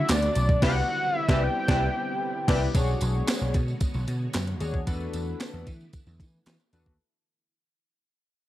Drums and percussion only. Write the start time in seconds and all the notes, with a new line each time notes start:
0.09 snare, clap, closed hi-hat, tambourine
0.22 closed hi-hat, tambourine
0.35 closed hi-hat, tambourine
0.49 kick
0.62 kick, snare, crash
1.29 kick, snare
1.68 kick, snare
2.48 kick, snare, crash
2.75 kick, closed hi-hat, tambourine
2.87 tambourine
3.01 closed hi-hat, tambourine
3.27 snare, clap, closed hi-hat, tambourine
3.54 kick, closed hi-hat, tambourine
3.68 tambourine
3.80 kick, closed hi-hat, tambourine
3.94 tambourine
4.07 closed hi-hat, tambourine
4.33 snare, clap, closed hi-hat, tambourine
4.47 closed hi-hat
4.61 closed hi-hat, tambourine
4.74 kick
4.87 kick, closed hi-hat, tambourine
5.00 tambourine
5.13 closed hi-hat, tambourine
5.40 snare, clap, closed hi-hat, tambourine
5.67 kick, closed hi-hat, tambourine
5.81 tambourine
5.93 kick, closed hi-hat, tambourine
6.07 tambourine
6.20 kick, closed hi-hat, tambourine
6.46 snare, clap, closed hi-hat, tambourine
6.60 closed hi-hat, tambourine
6.73 closed hi-hat, tambourine
6.86 kick